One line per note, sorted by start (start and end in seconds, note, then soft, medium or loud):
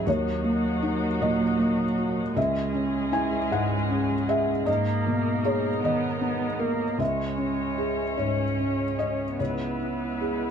0.06 2.32 D#2 medium
0.06 2.32 F#3 medium
0.06 2.36 A#3 medium
0.06 2.36 D#4 soft
0.06 2.36 F#4 soft
0.06 1.17 C#5 medium
0.44 1.05 A#3 soft
0.83 1.44 D#4 soft
1.21 1.82 A#2 soft
1.21 1.57 D#5 medium
1.59 2.21 A#3 soft
1.98 2.36 F#4 soft
2.36 4.63 C#2 soft
2.36 4.68 G#3 medium
2.36 7.00 G#3 soft
2.36 4.67 C#4 soft
2.36 4.67 G#4 medium
2.36 3.10 E5 medium
2.74 3.36 C#4 soft
3.12 3.74 E4 soft
3.12 3.49 G#5 medium
3.51 4.13 G#2 soft
3.51 4.25 F#5 medium
3.90 4.52 C#4 soft
4.29 4.67 G#4 soft
4.29 4.65 E5 medium
4.66 6.96 G#2 soft
4.66 5.81 A#3 medium
4.66 7.00 D#4 soft
4.66 7.00 A#4 soft
4.66 5.40 D#5 medium
5.07 5.68 B2 soft
5.45 6.07 G#4 soft
5.45 5.81 C#5 medium
5.81 6.45 D#3 soft
5.81 6.20 B3 medium
5.81 6.96 D#5 medium
6.21 6.61 B3 soft
6.21 6.84 B3 soft
6.59 7.00 A#3 soft
6.59 6.99 A#4 soft
6.98 9.35 C#2 soft
6.98 8.20 G#3 soft
6.98 10.51 G#3 soft
6.98 9.40 C#4 soft
6.98 9.40 C#5 soft
6.98 8.14 E5 medium
7.37 8.01 C#4 soft
7.78 8.42 G#4 soft
8.17 8.83 G#2 soft
8.17 9.38 C#4 soft
8.17 8.94 C#5 soft
8.59 9.23 C#4 soft
8.99 9.38 C#5 soft
8.99 9.37 D#5 soft
9.38 10.51 C#2 soft
9.38 10.51 B3 soft
9.38 10.51 E4 soft
9.38 10.51 B4 soft
9.38 10.51 C#5 soft
9.80 10.45 E4 soft
10.21 10.51 G#4 soft